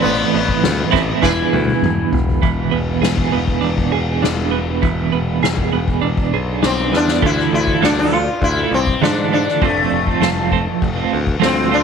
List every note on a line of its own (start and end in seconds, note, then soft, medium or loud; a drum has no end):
0.00 0.91 A2 medium
0.00 0.92 E3 loud
0.00 0.92 A3 medium
0.00 1.22 B3 medium
0.00 0.91 C4 medium
0.00 0.91 E4 loud
0.00 0.90 B4 loud
0.00 ride loud
0.04 0.23 A1 loud
0.33 0.53 A1 loud
0.33 ride medium
0.48 kick medium
0.63 0.83 D2 loud
0.63 snare loud
0.63 ride loud
0.91 1.12 A1 medium
0.91 1.22 A2 medium
0.91 1.20 E3 medium
0.91 1.21 A3 medium
0.91 1.21 C4 medium
0.91 1.21 E4 medium
0.91 1.20 B4 medium
0.91 kick medium
0.91 snare soft
0.91 ride medium
1.21 1.42 E1 loud
1.21 2.40 E3 medium
1.21 2.40 B3 medium
1.21 2.41 D4 medium
1.21 2.08 E4 medium
1.21 2.41 G#4 medium
1.21 2.41 B4 medium
1.21 kick medium
1.21 snare medium
1.53 1.72 D2 medium
1.53 high tom medium
1.67 high tom medium
1.82 2.02 E1 loud
1.82 mid tom loud
2.12 2.43 E1 medium
2.12 floor tom loud
2.28 floor tom medium
2.42 2.72 E1 medium
2.42 4.25 E3 medium
2.42 kick loud
2.42 ride loud
2.71 3.01 E1 medium
2.71 3.31 B3 medium
2.71 ride medium
3.02 3.31 E1 medium
3.02 3.91 G#4 medium
3.02 snare loud
3.02 ride medium
3.18 kick medium
3.32 3.61 E1 medium
3.32 4.50 B3 medium
3.32 ride medium
3.48 kick medium
3.61 3.91 E1 medium
3.61 4.21 D4 medium
3.61 ride medium
3.78 kick medium
3.92 4.21 E1 medium
3.92 5.42 G#4 medium
3.92 ride medium
4.22 4.79 E1 medium
4.22 5.72 D4 medium
4.22 snare loud
4.22 ride medium
4.51 5.11 B3 medium
4.51 ride medium
4.82 5.11 E1 loud
4.82 6.32 E3 medium
4.82 kick loud
4.82 ride medium
5.12 5.41 E1 medium
5.12 5.71 B3 medium
5.12 ride medium
5.43 5.71 E1 loud
5.43 6.33 G#4 medium
5.43 snare loud
5.43 ride medium
5.58 kick medium
5.73 6.01 E1 medium
5.73 6.91 B3 medium
5.73 ride medium
5.88 kick medium
6.01 6.31 E1 medium
6.01 6.61 D4 medium
6.01 ride medium
6.17 kick medium
6.32 6.61 B1 medium
6.32 7.23 G#4 medium
6.32 ride medium
6.62 6.91 B1 medium
6.62 7.22 D4 medium
6.62 snare loud
6.62 ride medium
6.66 6.95 C4 medium
6.93 7.21 E2 medium
6.93 7.22 B3 medium
6.93 7.25 D4 medium
6.93 snare medium
7.08 snare medium
7.22 7.45 D2 medium
7.22 7.80 D3 medium
7.22 7.80 E3 medium
7.22 7.68 A3 medium
7.22 7.52 E4 loud
7.22 7.67 F4 medium
7.22 7.66 A4 medium
7.22 kick loud
7.22 crash loud
7.39 snare soft
7.53 7.75 D2 medium
7.53 7.84 E4 medium
7.53 ride medium
7.67 7.82 A3 medium
7.67 7.82 F4 medium
7.67 7.83 A4 medium
7.67 kick medium
7.81 8.28 D2 medium
7.81 8.26 D3 medium
7.81 8.10 E3 medium
7.81 7.98 A3 medium
7.81 7.99 D4 medium
7.81 7.97 F4 loud
7.81 7.95 A4 loud
7.81 snare loud
7.81 ride medium
7.96 8.12 A3 medium
7.96 8.13 F4 medium
7.96 8.40 F4 loud
7.96 8.13 A4 medium
8.12 8.27 E3 medium
8.12 8.27 A3 medium
8.12 8.26 F4 medium
8.12 8.26 A4 medium
8.12 ride medium
8.42 8.64 D2 medium
8.42 8.74 E4 medium
8.42 kick medium
8.42 ride medium
8.57 8.86 A3 medium
8.57 8.86 F4 medium
8.57 8.85 A4 medium
8.71 8.94 C2 medium
8.71 9.01 C4 medium
8.71 ride medium
8.86 muted clean electric guitar stroke soft
8.86 kick medium
9.01 9.47 G#2 medium
9.01 9.60 D3 medium
9.01 9.31 E3 loud
9.01 9.31 A3 medium
9.01 9.32 D4 medium
9.01 9.32 F4 loud
9.01 9.33 A4 loud
9.01 snare loud
9.01 ride medium
9.32 9.60 E3 medium
9.32 9.46 A3 medium
9.32 9.64 D4 medium
9.32 9.45 F4 medium
9.32 9.44 A4 medium
9.32 ride medium
9.45 9.61 A3 medium
9.45 9.60 F4 medium
9.45 9.59 A4 medium
9.45 snare soft
9.61 9.85 F1 medium
9.61 10.19 F3 medium
9.61 10.07 A3 medium
9.61 10.79 A3 medium
9.61 10.06 C4 medium
9.61 10.05 F4 medium
9.61 kick loud
9.61 ride medium
9.91 10.15 F1 medium
9.91 ride medium
10.06 10.20 A3 medium
10.06 10.21 C4 medium
10.06 10.22 F4 medium
10.06 kick medium
10.21 10.67 F1 medium
10.21 10.50 F3 loud
10.21 10.37 A3 medium
10.21 10.36 C4 loud
10.21 10.35 F4 loud
10.21 snare loud
10.21 ride medium
10.36 10.51 A3 medium
10.36 10.52 C4 medium
10.36 10.52 F4 medium
10.51 10.97 F3 medium
10.51 10.66 A3 medium
10.51 10.66 C4 medium
10.51 10.65 F4 medium
10.51 kick medium
10.51 ride medium
10.66 muted clean electric guitar stroke medium
10.82 11.05 F1 medium
10.82 kick medium
10.82 ride loud
10.95 11.25 A3 medium
10.95 11.24 C4 medium
10.95 11.24 F4 medium
11.12 11.36 D2 medium
11.12 ride medium
11.25 muted clean electric guitar stroke medium
11.25 kick medium
11.40 11.83 D2 medium
11.40 11.69 F3 medium
11.40 11.70 A3 medium
11.40 11.70 C4 loud
11.40 11.71 F4 loud
11.40 snare loud
11.40 ride medium
11.45 11.75 C4 medium
11.70 11.83 F3 medium
11.70 11.83 A3 medium
11.70 11.83 C4 medium
11.70 11.82 D4 medium
11.70 11.83 F4 medium
11.70 ride medium